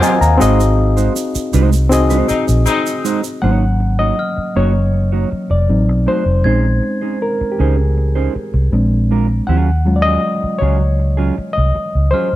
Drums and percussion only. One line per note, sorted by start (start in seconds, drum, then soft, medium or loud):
0.03 shaker medium
0.22 shaker soft
0.41 shaker medium
0.60 shaker medium
0.98 shaker soft
1.16 shaker medium
1.35 shaker soft
1.53 shaker soft
1.73 shaker soft
1.92 shaker medium
2.10 shaker soft
2.29 shaker medium
2.48 shaker soft
2.66 shaker medium
2.86 shaker medium
3.05 shaker medium
3.24 shaker soft